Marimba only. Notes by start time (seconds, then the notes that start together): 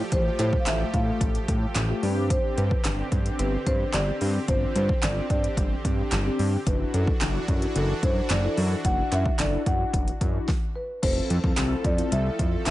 0.13 C5
0.40 C5
0.60 F5
0.67 E5
0.94 F5
2.30 C5
2.57 B4
3.39 B4
3.67 C5
3.94 D5
4.48 C5
4.76 C5
5.03 D5
5.31 D5
6.67 B4
6.94 A4
7.76 A4
8.03 C5
8.31 D5
8.85 F#5
9.12 E5
9.40 D5
9.67 F#5
10.76 B4
11.03 C5
11.85 D5
12.12 E5
12.66 E5